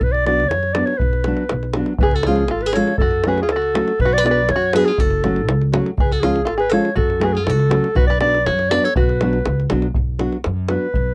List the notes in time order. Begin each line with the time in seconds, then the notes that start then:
0.01 B1 B4, davul low
0.12 D5, davul high
0.26 F#3 B3 D4 F#4 D5, davul high
0.40 davul high
0.49 F#2 C#5, davul high
0.63 davul high
0.73 F#3 B3 D4 F#4 D5, davul high
0.86 C#5, davul high
0.98 B1 B4, davul low
1.13 davul high
1.24 F#3 B3 D4 F#4, davul high
1.37 davul high
1.49 B1, davul high
1.63 davul high
1.73 F#3 B3 D4 F#4, davul high
1.86 davul high
1.99 C#2 B4, davul low
2.03 G#4
2.11 A4, davul high
2.15 F#4
2.23 F3 G#3 F4 G#4, davul high
2.27 C#4 F4
2.36 davul high
2.48 G#1 F4 A4, davul high
2.61 B4, davul high
2.66 G#4
2.73 F3 G#3 C#4 F4 A4 C#5, davul high
2.87 davul high
2.98 F#2 F#4 A4, davul low
3.11 davul high
3.24 F#3 A3 C#4 F#4 B4, davul high
3.28 G#4
3.38 davul high
3.42 F4 G#4
3.49 C#2 A4, davul high
3.56 F#4
3.62 davul high
3.74 F#3 A3 C#4 F#4, davul high
3.88 davul high
4.00 B1 B4, davul low
4.05 F#4
4.13 D5, davul high
4.18 B4
4.23 F#3 B3 D4 F#4 D5, davul high
4.31 B4
4.37 davul high
4.49 F#2 C#5, davul high
4.56 F#4
4.62 davul high
4.73 F#3 B3 D4 F#4 G#4 B4, davul high
4.85 F4 G#4, davul high
4.98 F#1 F#4 A4, davul low
5.10 davul high
5.24 F#3 A3 C#4 F#4, davul high
5.36 davul high
5.48 C#2, davul high
5.61 davul high
5.72 F#3 A3 C#4 F#4, davul high
5.86 davul high
5.97 C#2 G#4 B4, davul low
6.12 F#4 A4, davul high
6.20 F3 G#3 C#4 F4 G#4, davul high
6.36 davul high
6.45 G#1 F4 A4, davul high
6.58 G#4 B4, davul high
6.69 F3 G#3 C#4 F4 A4, davul high
6.74 C#5
6.85 davul high
6.95 F#2 F#4 A4, davul low
7.10 davul high
7.20 F#3 A3 C#4 F#4 G#4, davul high
7.25 B4
7.33 F4 G#4, davul high
7.44 C#2 A4, davul high
7.49 F#4
7.59 davul high
7.69 F#3 A3 C#4 F#4, davul high
7.84 davul high
7.95 B1 F#4 B4, davul low
8.07 B4 D5, davul high
8.20 F#3 B3 D4 F#4 B4 D5, davul high
8.35 davul high
8.46 F#2 F#4 C#5, davul high
8.59 davul high
8.70 F#3 B3 D4 F#4 B4 D5, davul high
8.84 A4 C#5, davul high
8.96 B1 F#4 B4, davul low
9.09 davul high
9.21 F#3 B3 D4 F#4, davul high
9.33 davul high
9.46 C#2, davul high
9.60 davul high
9.69 B1 F#3 B3 D4 F#4, davul high
9.82 davul high
9.94 B1, davul low
10.19 F#3 B3 D4 F#4, davul high
10.32 davul high
10.44 F#2, davul high
10.69 F#3 B3 D4 F#4 B4, davul high
10.94 B1, davul low